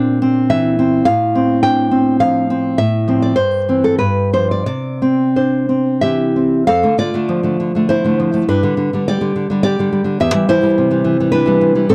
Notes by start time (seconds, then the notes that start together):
Already playing: A#2 C4 D4 D5
0.22 C4
0.50 E3 E5
0.79 C4
1.05 A2 F5
1.35 C4
1.63 D4 G5
1.91 C4
2.20 F3 F5
2.50 C4
2.78 A2 E5
3.08 F3 C4
3.22 D5
3.36 G2 C5
3.69 E3 C4
3.84 A4
3.99 G2 B4
4.33 F3 D4 C5
4.51 D5
4.66 C3 D5
5.02 C4
5.36 D4 C5
5.69 C4
6.01 E3 G4 E5
6.36 C4
6.67 F2 A4 F5
6.83 D3 A3
6.98 D3 F4 D5
7.14 D3 A3
7.29 F3
7.43 D3 A3
7.60 D3
7.75 D3 A3
7.89 E4 C5
8.04 D3 A3
8.20 F3
8.34 D3 A3
8.48 G2 D4 B4
8.63 D3 G3
8.77 D3
8.93 D3 G3
9.08 G3 G4 D5
9.21 D3 G3
9.36 D3
9.50 D3 G3
9.63 G4 D5
9.79 D3 G3
9.93 G3
10.04 D3 G3
10.20 E2 G4 E5
10.34 E3 G3
10.49 E3 E4 C5
10.63 E3 G3
10.78 C3
10.91 E3 G3
11.04 E3
11.20 E3 G3
11.32 D4 B4
11.46 E3 G3
11.61 C3
11.75 E3 G3
11.89 A2 C4 A4